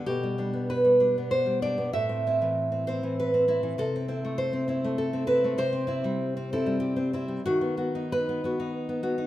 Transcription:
0.06 B2 G4
0.23 G3
0.38 G3 D4
0.53 B3
0.70 B4
0.84 G3
1.00 G3 D4
1.18 B3
1.31 C5
1.46 G3
1.62 G3 D4 D5
1.78 B3
1.93 A2 E5
2.09 C4
2.27 C4 E4
2.42 E3
2.72 C4
2.87 C4 E4 C5
3.03 E3
3.20 B4
3.34 C4
3.48 C4 E4
3.63 E3
3.78 C3 A4
3.96 C4
4.08 C4 E4
4.25 A3
4.38 C5
4.53 C4
4.68 C4 E4
4.84 A3
4.98 A4
5.13 C4
5.27 C4 E4 B4
5.44 A3
5.58 C3 C5
5.73 C4
5.87 C4 E4
6.04 G3
6.37 C4
6.53 C4 E4 A4
6.66 G3
6.80 G4
6.96 C4
7.13 C4 E4
7.28 G3
7.46 D#3 F#4
7.61 B3
7.77 B3 F#4
7.95 D#4
8.12 B4
8.29 B3
8.44 B3 F#4
8.60 D#4
8.89 B3
9.03 B3 F#4
9.18 D#4

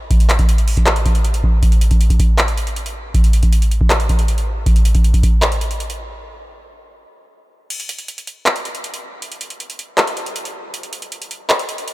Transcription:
0.11 kick, closed hi-hat
0.20 closed hi-hat
0.29 clap, closed hi-hat
0.39 kick, closed hi-hat
0.49 closed hi-hat
0.58 closed hi-hat
0.68 closed hi-hat, open hi-hat
0.77 kick, closed hi-hat
0.86 clap, closed hi-hat
0.96 closed hi-hat
1.06 kick, closed hi-hat
1.15 closed hi-hat
1.25 closed hi-hat
1.34 closed hi-hat
1.44 kick
1.63 kick, closed hi-hat
1.72 closed hi-hat
1.81 closed hi-hat
1.91 kick, closed hi-hat
2.01 closed hi-hat
2.10 kick, closed hi-hat
2.20 kick, closed hi-hat
2.38 clap, closed hi-hat
2.48 closed hi-hat
2.57 closed hi-hat
2.67 closed hi-hat
2.76 closed hi-hat
2.86 closed hi-hat
3.14 kick, closed hi-hat
3.24 closed hi-hat
3.33 closed hi-hat
3.43 kick, closed hi-hat
3.53 closed hi-hat
3.62 closed hi-hat
3.71 closed hi-hat
3.81 kick
3.90 clap, closed hi-hat
4.00 closed hi-hat
4.09 kick, closed hi-hat
4.19 closed hi-hat
4.28 closed hi-hat
4.38 closed hi-hat
4.66 kick, closed hi-hat
4.76 closed hi-hat
4.85 closed hi-hat
4.95 kick, closed hi-hat
5.04 closed hi-hat
5.14 kick, closed hi-hat
5.23 kick, closed hi-hat
5.42 clap, closed hi-hat
5.52 closed hi-hat
5.61 closed hi-hat
5.71 closed hi-hat
5.80 closed hi-hat
5.90 closed hi-hat
7.70 closed hi-hat, crash
7.80 closed hi-hat
7.89 closed hi-hat
7.99 closed hi-hat
8.08 closed hi-hat
8.18 closed hi-hat
8.27 closed hi-hat
8.46 clap, closed hi-hat
8.56 closed hi-hat
8.65 closed hi-hat
8.75 closed hi-hat
8.84 closed hi-hat
8.94 closed hi-hat
9.22 closed hi-hat
9.32 closed hi-hat
9.41 closed hi-hat
9.50 closed hi-hat
9.60 closed hi-hat
9.70 closed hi-hat
9.79 closed hi-hat
9.98 clap, closed hi-hat
10.07 closed hi-hat
10.17 closed hi-hat
10.26 closed hi-hat
10.36 closed hi-hat
10.45 closed hi-hat
10.74 closed hi-hat
10.83 closed hi-hat
10.93 closed hi-hat
11.02 closed hi-hat
11.12 closed hi-hat
11.22 closed hi-hat
11.31 closed hi-hat
11.50 clap, closed hi-hat
11.59 closed hi-hat
11.69 closed hi-hat
11.78 closed hi-hat
11.88 closed hi-hat

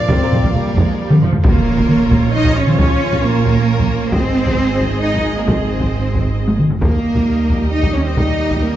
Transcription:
Already playing: F3 A#3 D5 F5
0.08 F1 F2 F3 C4 A#4 C5, taiko
0.20 F2 F3 A#4, taiko low-mid
0.32 F1 F2 F3 A#4, taiko low-mid
0.43 F2 F3 A#4, taiko
0.50 F1 F2 A#3
0.55 F1 G3 A#4
0.65 F2
0.76 F1 F2 G#3, taiko
0.88 F2
1.00 G3
1.10 F2, taiko mid
1.21 F1 F2 F3, taiko low-mid
1.33 taiko low
1.43 A#1 F3 A#3 C#4 F4 A#4 C#5, taiko, impact
1.56 taiko mid
1.77 taiko
1.89 taiko mid
2.11 taiko
2.33 D#4 D#5
2.45 taiko
2.53 C#4 C#5
2.65 C4 C5, taiko mid
2.69 C5
2.77 C#4 C#5, taiko
3.12 taiko
3.22 A#3 A#4
3.45 taiko
3.80 taiko
4.11 G#1 D#3 G#3 C4 G#4 C5 D#5, taiko
4.46 taiko
4.80 taiko
5.01 D#4 D#5
5.14 taiko
5.36 A#3 A#4
5.46 C4 C5, taiko
5.80 taiko
6.14 taiko
6.48 taiko high
6.59 taiko mid
6.70 taiko low
6.81 D#2 D#3 G3 A#3 G4 A#4 D#5, taiko
7.15 taiko
7.49 taiko
7.71 D#4 D#5
7.83 taiko
7.93 C#4 C#5
8.03 C4 C5
8.15 D#4 D#5, taiko
8.50 taiko
8.61 A#3 A#4

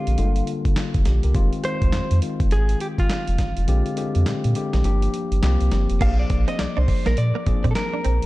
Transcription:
Already playing: D3 G#3 C4 F4 G4 A#4
0.07 A#1, closed hi-hat
0.18 G1 D3 G3 G#3 F4, closed hi-hat
0.25 A#3
0.36 closed hi-hat
0.47 closed hi-hat
0.65 G1, kick, closed hi-hat
0.76 D4 F4, snare, clap, closed hi-hat
0.94 F1, kick, closed hi-hat
1.05 A#1 G4, snare, closed hi-hat
1.23 C2 G4 A#4, closed hi-hat
1.34 F1 D#3 G#3 C4 F4, kick, closed hi-hat
1.53 closed hi-hat
1.64 D#3 G#3 C4 F4 C5, closed hi-hat
1.82 C2, kick, closed hi-hat
1.93 F2, snare, clap, closed hi-hat
2.11 F2, closed hi-hat
2.22 D#3 G#3 C4 F4, closed hi-hat
2.40 F1, kick, closed hi-hat
2.51 G#1 G#4, closed hi-hat
2.69 closed hi-hat
2.80 G4, closed hi-hat
2.98 G#1 F4, kick, closed hi-hat
3.10 snare, clap, closed hi-hat
3.27 F1, closed hi-hat
3.38 G1, kick, snare, closed hi-hat
3.57 F1, closed hi-hat
3.67 A#1 D3 G#3 C4 G4, closed hi-hat
3.86 closed hi-hat
3.97 D3 G#3 C4 G4, closed hi-hat
4.15 F2, closed hi-hat
4.26 A#2, snare, clap, closed hi-hat
4.44 A#2, closed hi-hat
4.55 D3 G#3 C4 G4, closed hi-hat
4.73 A#1, snare, closed hi-hat
4.84 G1 F3 A#3 D4 G4, closed hi-hat
5.02 closed hi-hat
5.14 closed hi-hat
5.32 G1, closed hi-hat
5.42 C2 F3 A#3 C4 G4, snare, clap, closed hi-hat
5.61 C2, closed hi-hat
5.71 G1, snare, closed hi-hat
5.89 F1, closed hi-hat
6.01 A#1 F3 A#3 D4 G4 F5, kick, closed hi-hat, crash
6.08 G#4
6.19 D5
6.30 A#1, muted clean electric guitar stroke, kick, closed hi-hat
6.48 C4 D#5, closed hi-hat
6.59 C2 D5, snare, clap, closed hi-hat
6.77 C2 D4 C5
6.88 muted clean electric guitar stroke, kick, open hi-hat
7.06 A#1 A#3 A#4, snare, closed hi-hat
7.17 A#2 D5, closed hi-hat
7.35 A#3
7.46 A#2 F3 A#3 C4 G#4, muted clean electric guitar stroke, kick, closed hi-hat
7.54 D4
7.64 A#2 C4, kick, closed hi-hat
7.71 A4
7.75 A#4, muted clean electric guitar stroke, snare, clap, closed hi-hat
7.93 D4
8.04 A#1 C4, closed hi-hat
8.22 closed hi-hat

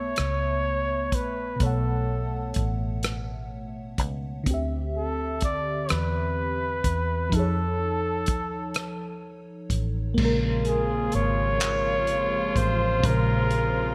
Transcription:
Already playing: B1 A3 B3 C#5 E5 A5
0.16 C#2, cross-stick, closed hi-hat
1.12 A#1 B4, kick, closed hi-hat
1.56 B2 A3, closed hi-hat
1.60 B1 A4 C#5, kick
1.66 F#5
2.54 A1, kick, closed hi-hat
3.03 cross-stick, closed hi-hat
3.98 C#2, kick, closed hi-hat
4.44 D2 D3 C4, kick, closed hi-hat
4.51 G4 E5
4.97 A4
5.41 D5, kick, closed hi-hat
5.89 E2 B4, cross-stick, closed hi-hat
6.84 E2, kick, closed hi-hat
7.29 F2 F3 D#4, kick, closed hi-hat
7.35 G#4 A4
7.39 A4 C#5
8.26 D#2, kick, closed hi-hat
8.74 cross-stick, closed hi-hat
9.70 A1, kick, closed hi-hat
10.14 C3 C#3 F3 G#3 A#3 F4, kick, crash
10.18 A#1 C#3 F3 A#3 F4
10.25 A#4
10.65 G#4, closed hi-hat
11.12 G#1 C#5, closed hi-hat
11.60 clap, closed hi-hat
12.07 closed hi-hat
12.56 A1 C5, kick, closed hi-hat
13.00 A#2 G#3, kick, closed hi-hat
13.04 A#1 C#3 C4 A#4
13.10 C5
13.51 closed hi-hat

